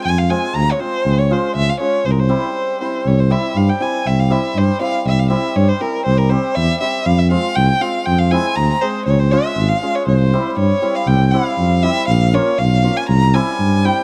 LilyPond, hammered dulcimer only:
\new Staff \with { instrumentName = "Hammered dulcimer" } { \time 2/4 \tempo 4 = 120 r8 <aes c' f'>16 r8. <aes c' f'>16 r16 | r8 <aes des' f'>16 r8. <aes des' f'>16 r16 | r8 <g c' e'>16 r8. <g c' e'>16 r16 | r8 <g c' e'>16 r8. <g c' e'>16 r16 |
r8 <g c' e'>16 r8. <g c' e'>16 r16 | r8 <g c' e'>16 r8. <g c' e'>16 r16 | r8 <g c' g'>16 r8. <g c' g'>16 r16 | r8 <aes c' f'>16 r8. <aes c' f'>16 r16 |
r8 <aes c' e'>16 r8. <aes c' aes'>16 r16 | r8 <aes des' f'>16 r8. <aes des' f'>16 r16 | r8 <g c' e'>16 r8. <g c' e'>16 r16 | r8 <g c' e'>16 r8. <g c' e'>16 r16 |
r8 <bes des' f'>16 r8. <bes des' f'>16 r16 | r8 <g c' e'>16 r8. <g c' e'>16 r16 | }